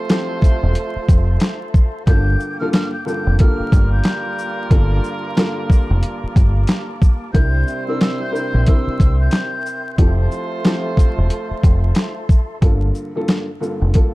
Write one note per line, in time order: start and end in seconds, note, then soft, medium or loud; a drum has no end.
0.00 1.70 A3 medium
0.00 1.70 F4 medium
0.00 2.05 A4 medium
0.00 1.70 C5 loud
0.00 2.03 E5 medium
0.00 2.05 A5 medium
0.00 2.03 C6 medium
0.09 1.95 F3 medium
0.09 1.95 C4 medium
0.09 1.95 E4 medium
0.09 1.95 G4 medium
0.09 1.96 A4 loud
0.09 snare loud
0.09 clap medium
0.09 closed hi-hat medium
0.42 kick loud
0.42 closed hi-hat medium
0.42 shaker medium
0.63 0.74 E1 medium
0.75 closed hi-hat medium
0.96 muted fingered electric bass stroke medium
1.09 1.36 F1 medium
1.09 kick loud
1.09 closed hi-hat medium
1.09 shaker medium
1.40 snare loud
1.40 clap loud
1.40 closed hi-hat medium
1.74 kick medium
1.74 shaker soft
2.06 2.35 G1 loud
2.06 2.55 G2 medium
2.06 2.55 D3 medium
2.06 2.56 A#3 medium
2.06 7.31 A#3 medium
2.06 2.56 F4 medium
2.06 2.56 A4 loud
2.06 7.31 F5 medium
2.06 4.69 G5 medium
2.06 7.31 D6 medium
2.06 2.57 G6 loud
2.06 kick loud
2.06 closed hi-hat loud
2.40 shaker soft
2.60 2.90 G2 loud
2.60 2.91 D3 medium
2.60 2.91 A#3 medium
2.60 2.91 F4 medium
2.60 2.91 A4 loud
2.60 2.71 F6 medium
2.72 2.91 F6 medium
2.72 snare loud
2.72 clap medium
2.72 closed hi-hat medium
2.93 3.04 G6 medium
3.06 3.37 G2 loud
3.06 3.37 D3 medium
3.06 3.37 A#3 medium
3.06 3.37 F4 medium
3.06 3.38 A4 loud
3.06 3.36 G6 medium
3.06 shaker medium
3.27 3.37 F1 medium
3.39 4.63 G2 medium
3.39 4.63 D3 medium
3.39 6.98 G3 medium
3.39 4.64 A#3 medium
3.39 6.98 F4 medium
3.39 4.64 F4 medium
3.39 4.64 A4 loud
3.39 6.98 A#4 loud
3.39 3.90 F6 medium
3.39 kick loud
3.39 closed hi-hat medium
3.60 muted fingered electric bass stroke soft
3.72 4.00 G1 loud
3.72 kick medium
3.72 closed hi-hat medium
3.72 shaker medium
3.93 4.67 G6 medium
4.04 snare loud
4.04 clap loud
4.04 closed hi-hat medium
4.39 shaker soft
4.70 4.99 G1 loud
4.70 5.33 G2 loud
4.70 5.33 D3 medium
4.70 5.33 A#3 medium
4.70 5.33 F4 medium
4.70 5.33 A4 loud
4.70 7.32 A5 medium
4.70 kick loud
4.70 closed hi-hat medium
5.04 shaker soft
5.36 7.22 G2 medium
5.36 7.22 D3 medium
5.36 7.23 A#3 medium
5.36 7.23 F4 medium
5.36 7.23 A4 loud
5.36 snare loud
5.36 clap loud
5.36 closed hi-hat medium
5.70 kick loud
5.70 shaker medium
5.91 6.01 F1 medium
6.03 closed hi-hat medium
6.24 muted fingered electric bass stroke soft
6.36 6.64 G1 loud
6.36 kick loud
6.36 closed hi-hat medium
6.36 shaker medium
6.67 snare loud
6.67 clap loud
6.67 closed hi-hat medium
7.02 kick loud
7.02 shaker medium
7.33 7.62 C2 loud
7.33 7.83 C3 loud
7.33 9.61 G3 medium
7.33 7.83 C4 medium
7.33 7.83 D4 medium
7.33 9.61 E4 medium
7.33 7.83 E4 medium
7.33 9.96 A#4 medium
7.33 7.83 A#4 loud
7.33 9.61 C5 medium
7.33 12.58 E5 medium
7.33 9.96 G5 medium
7.33 12.58 C6 medium
7.33 7.84 G6 loud
7.33 kick loud
7.33 closed hi-hat loud
7.68 shaker medium
7.88 8.18 C3 loud
7.88 8.18 C4 medium
7.88 8.18 D4 medium
7.88 8.18 E4 medium
7.88 8.19 A#4 loud
7.88 8.00 E6 medium
8.01 8.20 E6 medium
8.01 snare loud
8.01 clap medium
8.01 closed hi-hat medium
8.22 8.33 G6 medium
8.31 8.63 C3 medium
8.31 8.64 C4 medium
8.31 8.64 D4 medium
8.31 8.64 E4 medium
8.31 8.64 A#4 loud
8.31 8.64 G6 medium
8.31 shaker medium
8.54 8.65 A#1 medium
8.66 9.91 C3 medium
8.66 9.91 C4 medium
8.66 9.91 D4 medium
8.66 9.91 E4 medium
8.66 9.91 A#4 loud
8.66 9.17 E6 medium
8.66 kick loud
8.66 closed hi-hat medium
8.87 muted fingered electric bass stroke medium
9.00 9.28 C2 loud
9.00 kick loud
9.00 closed hi-hat medium
9.00 shaker medium
9.20 9.95 G6 medium
9.31 snare loud
9.31 clap loud
9.31 closed hi-hat medium
9.66 shaker soft
9.98 10.26 F1 loud
9.98 10.60 F3 loud
9.98 12.25 A3 medium
9.98 10.60 C4 medium
9.98 10.60 E4 medium
9.98 12.25 F4 medium
9.98 10.61 G4 medium
9.98 12.59 A4 medium
9.98 10.61 A4 loud
9.98 12.25 C5 medium
9.98 12.59 A5 medium
9.98 kick loud
9.98 closed hi-hat loud
10.31 shaker medium
10.64 12.50 F3 medium
10.64 12.50 C4 medium
10.64 12.50 E4 medium
10.64 12.50 G4 medium
10.64 12.51 A4 loud
10.64 snare loud
10.64 clap medium
10.64 closed hi-hat medium
10.97 kick medium
10.97 closed hi-hat medium
10.97 shaker medium
11.18 11.29 E1 medium
11.30 closed hi-hat medium
11.51 muted fingered electric bass stroke soft
11.64 11.91 F1 medium
11.64 kick loud
11.64 closed hi-hat medium
11.64 shaker medium
11.95 snare loud
11.95 clap loud
11.95 closed hi-hat medium
12.29 kick loud
12.29 shaker soft
12.61 12.90 G1 loud
12.61 13.10 G2 loud
12.61 13.10 D3 medium
12.61 13.11 A#3 medium
12.61 13.11 F4 medium
12.61 13.11 A4 loud
12.61 kick loud
12.61 closed hi-hat medium
12.95 shaker soft
13.16 13.45 G2 loud
13.16 13.45 D3 medium
13.16 13.46 A#3 medium
13.16 13.46 F4 medium
13.16 13.46 A4 loud
13.28 snare loud
13.28 clap medium
13.28 closed hi-hat medium
13.61 13.92 G2 loud
13.61 13.92 D3 medium
13.61 13.92 A#3 medium
13.61 13.92 F4 medium
13.61 13.92 A4 medium
13.61 shaker medium
13.82 13.92 F1 medium
13.94 14.14 G2 medium
13.94 14.14 D3 medium
13.94 14.14 A#3 medium
13.94 14.14 F4 medium
13.94 14.14 A4 loud
13.94 kick medium
13.94 closed hi-hat medium